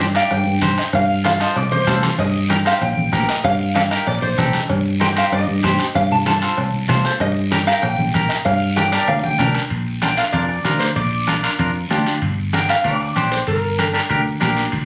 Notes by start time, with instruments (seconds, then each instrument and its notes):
Already playing: fingered electric bass G2, resonator guitar played with a steel bar D5
0.00 bombo rim, high conga
0.14 clean electric guitar D#4 G4 D5, resonator guitar played with a steel bar F5, bombo rim, short guiro
0.31 fingered electric bass G2, resonator guitar played with a steel bar G5, bombo rim, cowbell, high conga, long guiro
0.46 fingered electric bass G2
0.61 fingered electric bass G2, clean electric guitar D#4 G4 C5, bombo low, bombo rim, cowbell, high conga, short guiro
0.78 resonator guitar played with a steel bar D#5, bombo rim, short guiro
0.93 fingered electric bass G2, resonator guitar played with a steel bar F5, bombo low, bombo rim, cowbell, high conga, long guiro
1.24 clean electric guitar F4 A4 C5, resonator guitar played with a steel bar F5, bombo rim, cowbell, high conga, short guiro
1.40 clean electric guitar F4 A4 C5, resonator guitar played with a steel bar D#5, bombo rim, short guiro
1.56 fingered electric bass C2, resonator guitar played with a steel bar D5, bombo rim, cowbell, long guiro
1.71 fingered electric bass C2, resonator guitar played with a steel bar C5, high conga
1.87 fingered electric bass C2, clean electric guitar F4 A4 C5, bombo low, bombo rim, cowbell, high conga, low conga, low timbale, short guiro
2.03 resonator guitar played with a steel bar C5, bombo rim, high conga, short guiro
2.18 fingered electric bass G2, resonator guitar played with a steel bar D#5, bombo low, bombo rim, cowbell, high conga, long guiro
2.49 clean electric guitar D#4 G4 A#4, bombo rim, cowbell, high conga, short guiro
2.65 clean electric guitar D#4 G4 C5, resonator guitar played with a steel bar F5, bombo rim, short guiro
2.81 fingered electric bass A#1, resonator guitar played with a steel bar G5, bombo rim, cowbell, high conga, long guiro
2.97 fingered electric bass A#1, high conga
3.12 fingered electric bass A#1, clean electric guitar D#4 G4 A#4, bombo low, bombo rim, cowbell, high conga, low timbale, short guiro
3.29 resonator guitar played with a steel bar D#5, bombo rim, short guiro
3.44 fingered electric bass G2, resonator guitar played with a steel bar F5, bombo low, bombo rim, cowbell, high conga, long guiro
3.75 clean electric guitar D#4 G4 A4, resonator guitar played with a steel bar F5, bombo rim, cowbell, high conga, short guiro
3.91 clean electric guitar D#4 G4 A#4, resonator guitar played with a steel bar D#5, bombo rim, short guiro
4.07 fingered electric bass A#1, resonator guitar played with a steel bar D5, bombo rim, cowbell, high conga, long guiro
4.22 fingered electric bass A#1, resonator guitar played with a steel bar C5
4.38 fingered electric bass A#1, clean electric guitar D#4 G4 A4, bombo low, bombo rim, cowbell, high conga, low conga, short guiro
4.53 bombo rim, high conga, short guiro
4.69 fingered electric bass G2, bombo low, bombo rim, cowbell, high conga, long guiro
5.00 clean electric guitar D#4 G4 C5, resonator guitar played with a steel bar G5, bombo rim, cowbell, high conga, short guiro
5.16 clean electric guitar D#4 G4 C5, resonator guitar played with a steel bar F5, bombo rim, short guiro
5.32 fingered electric bass G2, resonator guitar played with a steel bar D#5, bombo rim, cowbell, high conga, long guiro
5.48 fingered electric bass G2
5.63 fingered electric bass G2, clean electric guitar D#4 G4 C5, bombo low, bombo rim, cowbell, high conga, low timbale, short guiro
5.79 bombo rim, short guiro
5.94 fingered electric bass G2, resonator guitar played with a steel bar F5, bombo low, bombo rim, cowbell, high conga, long guiro
6.11 resonator guitar played with a steel bar A5, low conga
6.26 clean electric guitar F4 A4 C5, resonator guitar played with a steel bar A5, bombo rim, cowbell, high conga, short guiro
6.42 clean electric guitar F4 A4 C5, bombo rim, short guiro
6.57 fingered electric bass C2, bombo rim, cowbell, high conga, long guiro
6.74 fingered electric bass C2
6.88 fingered electric bass C2, clean electric guitar F4 A4 C5, bombo low, bombo rim, cowbell, high conga, low conga, low timbale, short guiro
7.05 resonator guitar played with a steel bar C5, bombo rim, short guiro
7.20 fingered electric bass G2, resonator guitar played with a steel bar D#5, bombo low, bombo rim, cowbell, high conga, long guiro
7.51 clean electric guitar D#4 G4 A#4, bombo rim, cowbell, high conga, short guiro
7.67 clean electric guitar D#4 G4 A#4, resonator guitar played with a steel bar F5, bombo rim, short guiro
7.82 fingered electric bass A#1, resonator guitar played with a steel bar G5, bombo rim, cowbell, high conga, long guiro
7.99 fingered electric bass A#1, high conga
8.14 fingered electric bass A#1, clean electric guitar D#4 G4 A#4, bombo low, bombo rim, cowbell, high conga, short guiro
8.29 resonator guitar played with a steel bar D#5, bombo rim, short guiro
8.45 fingered electric bass G2, resonator guitar played with a steel bar F5, bombo low, bombo rim, cowbell, high conga, long guiro
8.76 clean electric guitar D4 G4 A#4, resonator guitar played with a steel bar G5, bombo rim, cowbell, high conga, short guiro
8.92 clean electric guitar D4 G4 A#4, resonator guitar played with a steel bar D5, bombo rim, short guiro
9.08 fingered electric bass D2, resonator guitar played with a steel bar F5, bombo rim, cowbell, high conga, long guiro
9.23 fingered electric bass D2, resonator guitar played with a steel bar G5, high conga
9.39 fingered electric bass D2, clean electric guitar D4 G4 A#4, bombo low, bombo rim, cowbell, high conga, low conga, short guiro
9.54 bombo rim, short guiro
9.70 fingered electric bass A#1, bombo low, high conga, high timbale
10.02 clean electric guitar D4 F4 A#4, resonator guitar played with a steel bar G5, bombo rim, high conga, high timbale, short guiro
10.17 clean electric guitar D4 F4 A#4, resonator guitar played with a steel bar F5, high timbale, short guiro
10.32 fingered electric bass F2, clean electric guitar D4 F4 A#4, resonator guitar played with a steel bar D5, bombo low, high conga, high timbale
10.49 bombo rim
10.65 fingered electric bass D2, clean electric guitar D4 F4 A#4, bombo rim, high conga, high timbale, low timbale, short guiro
10.79 resonator guitar played with a steel bar C5, high timbale, short guiro
10.96 fingered electric bass A#1, resonator guitar played with a steel bar D5, bombo low, high conga, high timbale, long guiro
11.27 clean electric guitar D4 F4 A#4, bombo rim, high conga, high timbale, short guiro
11.43 clean electric guitar D4 F4 A#4, high timbale, short guiro
11.59 fingered electric bass F2, clean electric guitar D4 F4 A#4, bombo low, high conga, high timbale, long guiro
11.90 fingered electric bass D2, clean electric guitar D4 F4 G4, bombo rim, high conga, high timbale, low timbale, short guiro
12.06 high timbale, short guiro
12.22 fingered electric bass G1, bombo low, high conga, high timbale, long guiro
12.53 clean electric guitar D4 G4 A#4, resonator guitar played with a steel bar G5, bombo rim, high conga, high timbale, short guiro
12.69 clean electric guitar D4 G4 A#4, resonator guitar played with a steel bar F5, high timbale, short guiro
12.84 fingered electric bass D2, clean electric guitar D4 G4 A#4, resonator guitar played with a steel bar D5, bombo low, high conga, high timbale, long guiro
13.01 bombo rim
13.16 fingered electric bass A#1, clean electric guitar D4 G4 C5, bombo rim, high conga, high timbale, short guiro
13.31 resonator guitar played with a steel bar C5, high timbale, short guiro
13.47 fingered electric bass G1, resonator guitar played with a steel bar A#4, bombo low, high conga, high timbale, long guiro
13.78 clean electric guitar D4 G4 A#4, bombo rim, high conga, high timbale, short guiro
13.93 clean electric guitar D4 G4 A#4, high timbale, short guiro
14.09 fingered electric bass D2, clean electric guitar D4 G4 A#4, bombo low, high conga, high timbale, long guiro
14.40 fingered electric bass A#1, clean electric guitar D4 G4 A#4, bombo rim, high conga, high timbale, low timbale, short guiro
14.57 high timbale, short guiro
14.72 fingered electric bass D2, bombo low, high conga, high timbale, long guiro